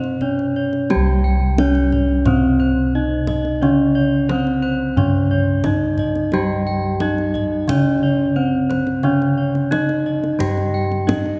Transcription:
Already playing: C3 C4 C5
0.04 kendang slap
0.21 C#4 C#5, kendang low
0.39 kendang slap
0.56 C#5
0.73 kendang slap
0.90 G3 G4 G5, kendang high
0.96 C2
1.24 G5
1.58 C#4 C#5, kendang high
1.75 kendang slap
1.92 C#5, kendang low
2.26 C3 C4 C5, kendang low
2.60 C5
2.94 C#4 D#4 D#5
3.27 D#5, kendang high, kendang low
3.45 kendang slap
3.62 C#3 C#4 C#5
3.95 C#5
4.29 C4 C5, kendang high
4.47 kendang slap
4.62 C5
4.96 G2 C#3 C#4 C#5, kendang low
5.31 C#5
5.64 C#4 D#4 D#5, kendang high, kendang low
5.98 D#5, kendang low
6.15 kendang slap
6.32 G3 G4 G5, kendang high
6.67 G5
7.00 C#4 D#4 D#5, kendang high
7.18 kendang slap
7.34 D#5, kendang low
7.68 C#3 C#4 C#5, kendang low
8.03 C#5
8.36 C4 C#4 C5
8.70 C5, kendang high, kendang low
8.87 kendang slap
9.03 C#3 C#4 C#5
9.22 kendang slap
9.38 C#5
9.55 kendang slap
9.71 C#4 D#4 D#5, kendang high
9.89 kendang slap
10.06 D#5
10.24 kendang slap
10.39 G2 G3 G4 G5, kendang low
10.57 kendang slap
10.74 G5
10.91 kendang slap
11.07 C#4 D#4 D#5, kendang high, kendang low
11.26 kendang slap

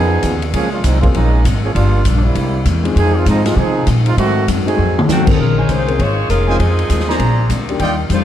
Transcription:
Already playing: F2 C#3 F3 B3 D#4 F4 G#4 A#4
0.23 D#2 C#3 B3 F4 A#4, kick, hi-hat pedal, ride
0.42 ride
0.53 C#2 F#2 F3 A#3 C4 C#4 G#4, kick, ride
0.72 G#3 A#3 C#4 F4
0.83 C2 F#2 F3 G#3 A#3 C4 D#4, kick, hi-hat pedal, ride
1.01 F#3 G#3 A#3 C4 C#4 F4 G#4, kick, ride
1.14 A#1 F#2 F3 G#3 A#3 C4 C#4 D#4, kick, ride
1.45 G#1 F#2 F3 A#3 C4, kick, hi-hat pedal, ride
1.63 F3 A#3 C#4 G#4
1.74 G1 G2 F3 G3 A#3 D4 F4, kick, ride
2.05 A#1 G2 F3 A#3 D4, kick, hi-hat pedal, ride
2.15 D4
2.23 G3 A#3 C4 E4
2.35 C2 C3 G#3 A#3 E4, kick, ride
2.65 E2 C3 G#3 A#3 E4, kick, hi-hat pedal, ride
2.83 F3 G#3 C4 D#4 G#4, ride
2.94 F2 D#3 G#3 C4 D#4 G#4, kick, ride
2.99 F3
3.16 G#3 C4 D#4 F4
3.25 F2 G#2 D#3 F3 G#3 C4 D#4, kick, hi-hat pedal, ride
3.44 F3 G#3 C4 D#4 F4 G#4, snare, ride
3.56 F2 C3 D#3 F3 G#3 C4 D#4 G#4, kick
3.87 F2 A#2 D#3 G#3 C4, kick, hi-hat pedal, ride
4.06 G#3 C4 D#4 F4, ride
4.17 G#2 D#3 F#3 A3 C4 F#4, kick, ride
4.47 F#2 G#2 F#3 A3 C4, kick, hi-hat pedal, ride
4.65 F#3 A3 C4 D#4 F#4 G#4, ride
4.76 F2 G#2 F#3 A3 C4
4.99 mid tom
5.08 D#2 G#2 F#3 A3 C4, snare, hi-hat pedal
5.12 D#3 F#4
5.25 D#3 A#3 C4 C#4 G#4, kick, crash
5.32 F#3 C4 D#4 A4
5.38 A#1 A#2 D#3 G#3 C#4 F4 A#4, kick
5.57 D#4 C5 C#5 G#5
5.69 C2 A#2 D#3 G#3 C#4 F4 C5, kick, hi-hat pedal, ride
5.87 D#3 A#3 C4 C#4 G#4, ride
5.99 G#1 A#2 D#3 G#3 C#4 F4 C5 C#5, kick, ride
6.29 F1 A#2 D#3 G#3 C#4 F4 A#4, kick, hi-hat pedal, ride
6.47 F3 G#3 C4 D#4 F4 G#4 C5 D#5 G#5
6.58 F2 D#3 F3 G#3 C4 D#4 G#4, kick, ride
6.79 ride
6.90 D#2 F2 D#3 G#3 C4, kick, hi-hat pedal, ride
7.00 snare
7.08 F3 A#3 C4 D4 G#4 C5 D5 A#5, snare
7.19 A#1 A#2 G#3 C4 D4, kick, ride
7.49 D2 A#2 G#3 C4 D4, kick, hi-hat pedal, ride
7.69 D#3 G3 A#3 D4 G4, ride
7.79 D#2 D#3 G3 D4 F4 D5 D#5 G5, kick, ride
8.09 F2 D#3 G3 A3 D4 F4 C5, kick, hi-hat pedal, ride

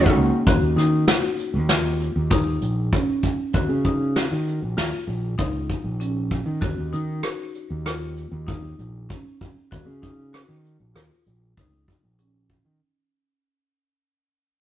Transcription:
Already playing: D#2
0.00 D#3 G#3 C#4 F#4
0.06 kick
0.15 C#2 A#3
0.47 D#2 F#4, kick, closed hi-hat
0.61 D#2
0.76 D#3 D#4, snare, closed hi-hat
1.08 F#4, snare, closed hi-hat
1.39 closed hi-hat
1.54 D#2
1.69 F4, snare, closed hi-hat
2.00 closed hi-hat
2.16 D#2
2.31 D#4, kick, closed hi-hat
2.61 A#1, closed hi-hat
2.92 C#4, kick, closed hi-hat
3.23 kick, closed hi-hat
3.53 D#2 F#4, kick, closed hi-hat
3.69 C#3
3.85 D#4, kick, closed hi-hat
4.16 F#4, snare, closed hi-hat
4.31 D#3
4.48 closed hi-hat
4.62 A#1
4.77 D#2 F4, snare, closed hi-hat
5.07 A#1, closed hi-hat
5.38 C#2 D#4, kick, snare, closed hi-hat
5.69 kick, closed hi-hat
5.84 A#1
6.00 C#4, closed hi-hat
6.30 kick, closed hi-hat
6.46 D#3
6.61 D#2 F#4, kick, closed hi-hat
6.78 D#2
6.93 D#3 D#4, closed hi-hat
7.23 F#4, cross-stick, closed hi-hat
7.54 closed hi-hat
7.70 D#2
7.86 F4, cross-stick, closed hi-hat
8.17 closed hi-hat
8.32 D#2
8.47 D#4, kick, closed hi-hat
8.79 A#1, closed hi-hat
9.09 C#4, kick, closed hi-hat
9.41 kick, closed hi-hat
9.71 D#2 F#4, kick, closed hi-hat
9.86 C#3
10.02 D#4, kick, closed hi-hat
10.33 F#4, cross-stick, closed hi-hat
10.49 D#3
10.65 closed hi-hat
10.80 A#1
10.95 D#2 F4, cross-stick, closed hi-hat
11.26 A#1, closed hi-hat
11.57 C#2 D#4, kick, closed hi-hat
11.88 kick, closed hi-hat
12.04 A#1
12.18 C#4, closed hi-hat
12.49 kick, closed hi-hat
12.65 D#3

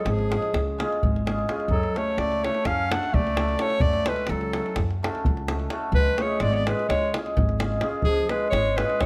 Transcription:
Already playing: G#3
0.01 F#3 A4
0.05 G#1 F3, davul high
0.11 G#4
0.19 davul high
0.29 G#3 C#4 F4 G#4, davul high
0.42 davul high
0.54 C#2, davul high, davul low
0.78 G#3 C#4 F4 G#4, davul high
0.93 davul high
1.03 G#1, davul low
1.16 davul high
1.26 G#3 C#4 F4 G#4, davul high
1.39 davul high
1.48 G#3 C#4 F4 G#4, davul high
1.60 davul high
1.68 F#2 F#3 A4, davul low
1.83 davul high
1.94 A3 C#4 F#4 A4 C#5, davul high
2.18 C#2 A3 D5, davul high
2.32 davul high
2.43 A3 C#4 F#4 A4 C#5, davul high
2.55 davul high
2.65 F#2 C#4 F5, davul high, davul low
2.90 A3 C#4 D4 F#4 A4 F#5, davul high
3.03 davul high
3.13 C#2 A3 D5, davul low
3.27 davul high
3.37 A3 C#4 F#4 A4, davul high
3.49 davul high
3.58 A3 C#4 F#4 A4, davul high
3.62 C#5
3.70 davul high
3.80 F#2 A3 D5, davul low
3.94 davul high
4.05 G#3 A3 C#4 F#4 A4 B4, davul high
4.16 davul high
4.27 C#2 F#3 A4, davul high
4.41 davul high
4.53 A3 C#4 F#4, davul high
4.58 A4
4.66 davul high
4.76 F#2, davul high, davul low
4.91 davul high
5.03 A3 C#4 F#4 A4, davul high
5.15 davul high
5.25 C#2, davul low
5.37 davul high
5.48 A3 C#4 F#4 A4, davul high
5.60 davul high
5.70 A3 C#4 F#4 A4, davul high
5.92 C#2 G#3 B4, davul low
6.07 davul high
6.17 G#3 A3 C#4 F4 G#4, davul high
6.22 C#5
6.40 G#1 G#3 D5, davul high
6.48 A3 B3 C#5
6.54 D5, davul high
6.66 G#3 C#4 F4 G#4 B4, davul high
6.79 davul high
6.87 C#2 G#3 C#5, davul high, davul low
7.14 G#3 C#4 F4 G#4, davul high
7.26 davul high
7.37 G#1, davul low
7.49 davul high
7.60 G#3 C#4 F4 G#4, davul high
7.72 davul high
7.81 G#3 C#4 F4 G#4, davul high
8.02 C#2 F3 G#4, davul low
8.17 davul high
8.29 G#3 C#4 F4 G#4 B4, davul high
8.50 G#1 C#5, davul high
8.54 G#3
8.65 davul high
8.76 G#3 C#4 F4 G#4 B4, davul high
8.82 G#3
8.90 davul high
9.01 C#2 C#5, davul high, davul low

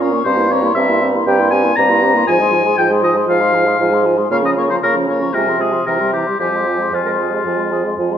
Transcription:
Already playing: A#2
0.00 C#4 F4 C#5 A#5
0.12 A#3 C#4 C#6
0.24 G2 C4 G4 C5 A#5
0.38 A#3 E4 C6
0.50 C4 G4 C#5 A#5
0.63 A#3 E4 C6
0.75 G2 C4 G4 E5 A#5
0.88 A#3 E4 C6
1.01 C4 G4 A#5
1.13 A#3 E4 C6
1.26 G2 C4 G4 G5 A#5
1.39 A#3 E4 C6
1.50 C4 G4 G#5 A#5
1.64 A#3 E4 C6
1.76 G2 C4 G4 A#5
1.89 A#3 E4 C6
2.02 C4 G4 A#5
2.14 A#3 E4 C6
2.27 G#2 F3 F4 G#5
2.40 G#3 G#4 C6
2.51 F3 F4 G#5
2.64 G#3 G#4 C6
2.77 G#2 F3 F4 G5 G#5
2.90 G#3 G#4 C6
3.03 F3 F4 D#5 G#5
3.15 G#3 G#4 C6
3.27 G#2 F3 F4 F5 G#5
3.40 G#3 G#4 C6
3.52 F3 F4 G#5
3.65 G#3 G#4 C6
3.79 G#2 F3 F4 G#5
3.91 G#3 G#4 C6
4.05 F3 F4 G#5
4.17 G#3 G#4 C6
4.30 C#3 A#3 F4 F5 C#6
4.43 F3 C#4 D#5 A#5
4.56 A#3 F4 C#5 C#6
4.70 F3 C#4 C5 A#5
4.82 C#3 A#3 F4 A#4 C#6
4.95 F3 C#4 A#5
5.08 A#3 F4 C#5 C#6
5.21 F3 C#4 A#5
5.34 C3 G#3 F4 A#4 G#5
5.47 F3 G#4 C6
5.59 G#3 F4 G#4 G#5
5.72 F3 G#4 C6
5.86 C3 E3 E4 A#4 A#5
5.99 G3 G4 C6
6.13 E3 E4 G4 A#5
6.26 G3 G4 C6
6.39 F2 F3 F4 G4 G#5
6.52 G#3 G#4 C6
6.65 F3 F4 G#5
6.79 G#3 G#4 C6
6.92 F2 F3 F4 C5 G#5
7.04 G#3 A#4 C6
7.18 F3 G#4 G#5
7.32 G#3 G4 C6
7.44 F2 F3 F4 G#5
7.58 G#3 C6
7.72 F3 G#4 G#5
7.84 G#3 C6
7.98 F2 F3 F4 G#5
8.11 G#3 C6

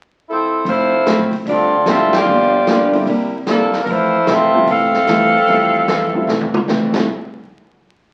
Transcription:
0.28 F3 C4 E4 A4
0.65 F1 F3 A3 C4 E4 F4 C5, open hi-hat
1.06 F3 A3 C4 E4, snare, closed hi-hat
1.19 A1
1.32 C2, open hi-hat
1.45 D2 D3 G3 C4 F4 A4 D5, open hi-hat
1.86 G#1 D3 F3 G3 A3 C4 E4 F4 A4 E5, snare, closed hi-hat
2.13 A#3 F4 G4 D5, snare, ride
2.25 G1 G2 F3 A#3
2.29 D4
2.67 G2 F3 A#3 D4, snare, closed hi-hat
2.93 D3 G3 A#3 C4 E4, open hi-hat
3.05 C2 C3 G3 A#3 E4, open hi-hat
3.47 C3 F3 G3 A#3 D4 E4 A4, snare, closed hi-hat
3.73 snare, open hi-hat
3.83 F2 A#4, open hi-hat
3.88 F2 E3 A3 C4 E4 F4 C5
4.26 F2 C3 E3 A3 C4 F4 A4 E5, snare, closed hi-hat
4.54 F3 G3 A3 C4 E4
4.66 C2 F2 E3 A3 C4 E5 F5, open hi-hat
4.70 A4
4.94 snare
5.07 E2 F2 E3 F3 G3 A3 C4 E4, snare, closed hi-hat
5.47 F2 E3 F3 G3 A3 C4, open hi-hat
5.87 F2 E3 A3 C4, snare, closed hi-hat
6.14 F3 G3 A3 C4 E4
6.27 C2 F2 E3 A3 C4, snare
6.41 floor tom
6.54 mid tom
6.68 F2 E3 A3 C4, snare
6.93 F1 F2 E3 F3 G3 A3 C4 E4, kick, snare, crash

